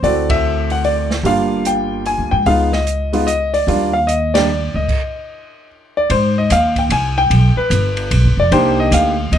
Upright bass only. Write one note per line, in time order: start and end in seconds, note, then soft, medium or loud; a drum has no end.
0.03 1.20 D2 medium
1.23 2.14 G1 medium
2.18 2.31 D2 medium
2.32 2.45 G#2 medium
2.46 3.63 C#2 medium
3.67 4.70 D#2 medium
4.74 4.87 D2 medium
6.10 6.49 G#2 medium
6.50 6.89 D#2 medium
6.89 7.29 C2 medium
7.30 7.55 B1 medium
7.56 muted upright bass stroke soft
7.70 8.10 G1 medium
8.11 8.25 B1 medium
8.24 8.37 G1 soft
8.37 8.50 F1 medium
8.51 8.91 C2 medium
8.91 9.31 D2 medium
9.32 9.38 D#2 medium